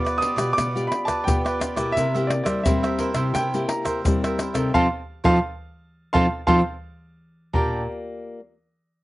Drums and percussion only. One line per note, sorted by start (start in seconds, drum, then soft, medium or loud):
0.07 pandeiro soft
0.07 tamborim medium
0.07 shaker soft
0.22 pandeiro medium
0.22 surdo soft
0.38 pandeiro medium
0.38 tamborim medium
0.38 shaker medium
0.58 pandeiro medium
0.58 tamborim medium
0.58 shaker medium
0.58 surdo medium
0.77 pandeiro soft
0.77 shaker soft
0.92 pandeiro medium
0.92 tamborim medium
1.08 pandeiro medium
1.08 tamborim medium
1.08 shaker medium
1.08 surdo soft
1.28 pandeiro medium
1.28 shaker medium
1.28 surdo loud
1.46 pandeiro soft
1.46 tamborim medium
1.46 shaker soft
1.61 pandeiro medium
1.61 tamborim medium
1.61 shaker medium
1.61 surdo soft
1.77 pandeiro medium
1.77 tamborim medium
1.77 shaker medium
1.77 surdo soft
1.97 pandeiro medium
1.97 shaker medium
1.97 surdo medium
2.16 pandeiro soft
2.16 shaker soft
2.30 pandeiro medium
2.30 tamborim medium
2.46 pandeiro medium
2.46 tamborim medium
2.46 shaker medium
2.46 surdo soft
2.66 pandeiro medium
2.66 shaker medium
2.66 surdo loud
2.84 pandeiro soft
2.84 tamborim medium
2.84 shaker soft
2.99 pandeiro medium
2.99 surdo soft
3.14 pandeiro medium
3.14 tamborim medium
3.14 shaker medium
3.35 pandeiro medium
3.35 tamborim medium
3.35 shaker medium
3.35 surdo medium
3.54 pandeiro soft
3.54 shaker soft
3.69 pandeiro medium
3.69 tamborim medium
3.85 pandeiro medium
3.85 tamborim medium
3.85 shaker medium
3.85 surdo soft
4.05 pandeiro medium
4.05 shaker medium
4.05 surdo loud
4.24 pandeiro soft
4.24 tamborim medium
4.24 shaker soft
4.39 pandeiro medium
4.39 tamborim medium
4.39 shaker medium
4.55 pandeiro medium
4.55 tamborim medium
4.55 shaker medium
4.55 surdo soft
4.74 surdo medium
5.25 surdo medium
6.15 surdo loud
6.47 surdo medium
7.54 surdo medium